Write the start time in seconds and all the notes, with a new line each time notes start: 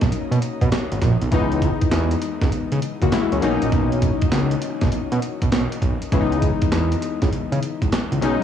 Already playing: F#3 A#3 C#4 D#4
0.01 B1, kick, snare, closed hi-hat
0.12 closed hi-hat
0.31 B2, closed hi-hat
0.42 closed hi-hat
0.62 B2, kick, closed hi-hat
0.72 snare, clap, closed hi-hat
0.92 G#1, closed hi-hat
1.02 A#1, kick, snare, closed hi-hat
1.22 B1, closed hi-hat
1.31 C#2 E3 G#3 B3 D#4, kick, closed hi-hat
1.52 closed hi-hat
1.62 kick, closed hi-hat
1.82 kick, closed hi-hat
1.92 E2, snare, clap, closed hi-hat
2.11 closed hi-hat
2.22 closed hi-hat
2.42 C#2, kick, snare, closed hi-hat
2.52 C#3, closed hi-hat
2.72 C#3, closed hi-hat
2.82 closed hi-hat
3.02 C#2 A#3 F#4, kick, closed hi-hat
3.12 G#3 E4, snare, clap, closed hi-hat
3.32 C#2 E3 C#4, closed hi-hat
3.41 B1 F#3 A#3 C#4 D#4, closed hi-hat
3.62 A#1, closed hi-hat
3.72 B1, kick, closed hi-hat
3.92 closed hi-hat
4.02 kick, closed hi-hat
4.22 kick, closed hi-hat
4.32 C#2, snare, clap, closed hi-hat
4.51 closed hi-hat
4.62 closed hi-hat
4.81 B1, kick, snare, closed hi-hat
4.92 B2, closed hi-hat
5.12 B2, closed hi-hat
5.22 closed hi-hat
5.42 B1, kick, closed hi-hat
5.52 B1, snare, clap, closed hi-hat
5.72 closed hi-hat
5.82 B1, kick, closed hi-hat
6.02 closed hi-hat
6.12 C#2 E3 G#3 B3 C#4, kick, closed hi-hat
6.21 D#4
6.32 closed hi-hat
6.42 kick, closed hi-hat
6.62 kick, closed hi-hat
6.72 E2, snare, clap, closed hi-hat
6.92 closed hi-hat
7.02 closed hi-hat
7.22 C#2, kick, snare, closed hi-hat
7.32 C#3, closed hi-hat
7.52 C#3, closed hi-hat
7.62 closed hi-hat
7.82 C#2, kick, closed hi-hat
7.92 snare, clap, closed hi-hat
8.12 C#2, closed hi-hat
8.21 B1 F#3 G#3 C#4 D#4, closed hi-hat